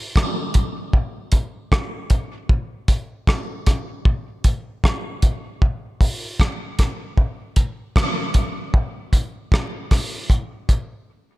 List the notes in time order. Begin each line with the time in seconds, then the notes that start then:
0.16 kick, cross-stick, hi-hat pedal
0.54 kick, closed hi-hat
0.93 kick
1.32 kick, closed hi-hat
1.72 kick, cross-stick
2.10 kick, closed hi-hat
2.49 kick
2.88 kick, closed hi-hat
3.27 kick, cross-stick
3.67 kick, cross-stick, closed hi-hat
4.05 kick
4.44 kick, closed hi-hat
4.84 kick, cross-stick
5.22 kick, closed hi-hat
5.62 kick
6.01 kick, open hi-hat
6.40 kick, cross-stick, hi-hat pedal
6.79 kick, cross-stick, closed hi-hat
7.17 kick
7.56 kick, closed hi-hat
7.96 kick, cross-stick
8.34 kick, closed hi-hat
8.74 kick
9.13 kick, closed hi-hat
9.52 kick, cross-stick
9.91 kick, cross-stick, open hi-hat
10.30 kick, hi-hat pedal
10.69 kick, closed hi-hat